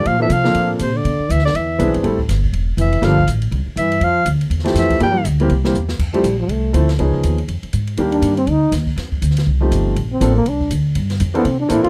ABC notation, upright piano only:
X:1
M:4/4
L:1/8
Q:"Swing" 1/4=242
K:F
V:1 name="Upright piano"
z [F,B,CDA] z [F,B,CDA]3 z2 | z6 [E,=B,CD^G]2 | [G,A,CEA] z6 z | [G,B,DFA] z6 z |
z4 z [F,A,CEG]3 | [F,G,B,DG] z2 [E,G,B,CG] z [E,G,B,CG] z2 | z [F,A,CEG] z4 [F,A,CEA] z | [F,_C_D_E_A]3 z4 z |
[_E,G,B,DG]3 z4 z | z4 z [F,A,C_EG]3 | z2 [F,B,CDA] z4 z | z3 [E,B,CDA] z2 [E,B,CDA]2 |]